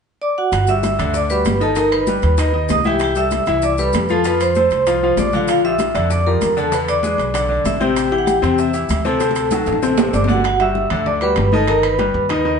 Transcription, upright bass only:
0.52 G1
0.99 D2
1.46 G1
2.23 D#2
2.69 C2
3.47 C2
3.94 F2
4.71 C2
5.17 A#1
5.95 F2
6.42 E2
7.18 B1
7.64 A1
8.42 E2
8.89 D2
9.66 A1
10.13 G1
10.90 D2
11.37 G1
12.14 D#2

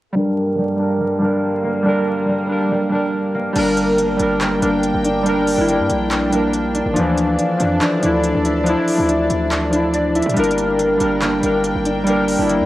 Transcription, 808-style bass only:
3.56 G1
4.20 G1
4.62 G1
4.94 G1
5.58 G1
5.79 G2
5.90 A#1
6.86 G1
6.96 D2
7.60 F2
8.03 D2
8.35 D2
8.98 D2
9.30 D2
10.26 A2
10.37 G1
11.01 G1
11.43 G1
11.75 G1
12.39 G1
12.60 G2

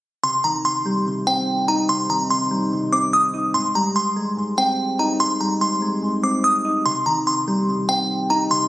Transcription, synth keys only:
0.23 C3
0.44 D#3
0.65 C3
0.86 G3
1.06 C3
1.27 C4
1.68 D#4
1.89 C3
2.10 D#3
2.30 C3
2.51 G3
2.72 C3
2.92 C4
3.34 D#4
3.54 G#2
3.75 G3
3.96 G#2
4.16 G#3
4.37 G#2
4.58 C4
4.99 D#4
5.20 G#2
5.41 G3
5.61 G#2
5.82 G#3
6.03 G#2
6.23 C4
6.65 D#4
6.86 C3
7.06 D#3
7.27 C3
7.48 G3
7.68 C3
7.89 C4
8.30 D#4
8.51 C3

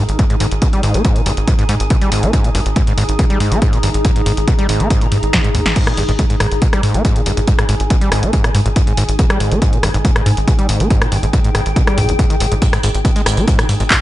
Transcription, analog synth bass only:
0.09 G#1
0.40 G#1
0.52 G#1
0.83 G#1
0.94 G#1
1.26 G#1
1.37 G#1
1.69 G#2
1.80 G#1
2.12 G#1
2.23 G#1
2.55 G#1
2.66 G#1
2.98 G#1
3.09 G#1
3.40 G#2
3.52 G#1
3.83 G#1
3.94 G#1
4.26 G#1
4.37 G#1
4.69 G#1
4.80 G#1
5.12 G#2
5.23 G#1
5.55 D#2
5.66 G#1
5.98 G#1
6.09 G#1
6.40 G#1
6.52 G#1
6.83 G#2
6.95 G#1
7.26 G#1
7.37 G#1
7.69 G#1
7.80 G#1
8.12 G#1
8.23 G#1
8.55 G#2
8.66 G#1
8.97 G#1
9.09 G#1
9.40 G#1
9.52 G#1
9.83 G#1
9.95 G#1
10.26 G#2
10.37 G#1
10.69 G#1
10.80 G#1
11.12 G#1
11.23 G#1
11.55 G#1
11.66 G#1
11.98 G#2
12.09 G#1
12.41 G#1
12.52 G#1
12.84 G#1
12.95 G#1
13.26 G#1
13.37 G#1
13.69 G#2
13.80 G#1

